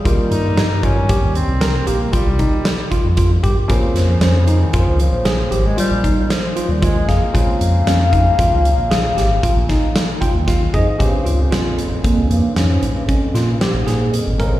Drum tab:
HH |xxxxxxxxxxxxxx|xxxxxxxxxxxxxx|xxxxxxxxxxxxxx|xxxxxxxxxxxxxx|
SD |--o---o---o---|-oo---o---o--o|--o---oo-oo-o-|--o---o--ooo--|
BD |o--oo---oo-ooo|o---o----o--oo|o--oo---oo-ooo|o---o---o----o|